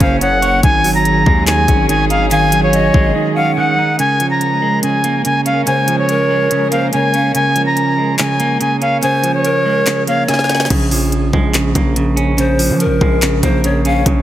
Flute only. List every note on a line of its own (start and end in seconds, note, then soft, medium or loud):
0.01 0.17 F5 medium
0.21 0.61 F#5 medium
0.63 0.93 G#5 loud
0.95 1.44 A#5 medium
1.47 1.87 G#5 medium
1.89 2.05 G#5 medium
2.10 2.26 F5 medium
2.31 2.61 G#5 loud
2.63 3.12 C#5 medium
3.36 3.52 F5 medium
3.57 3.97 F#5 medium
3.99 4.29 G#5 loud
4.30 4.80 A#5 medium
4.83 5.23 G#5 medium
5.25 5.41 G#5 medium
5.46 5.62 F5 medium
5.67 5.96 G#5 medium
5.99 6.68 C#5 medium
6.71 6.88 F5 medium
6.93 7.32 G#5 medium
7.35 7.65 G#5 loud
7.66 8.15 A#5 medium
8.19 8.58 G#5 medium
8.61 8.77 G#5 medium
8.82 8.98 F5 medium
9.03 9.32 G#5 medium
9.34 10.04 C#5 medium
10.08 10.24 F5 medium
10.29 10.68 G#5 medium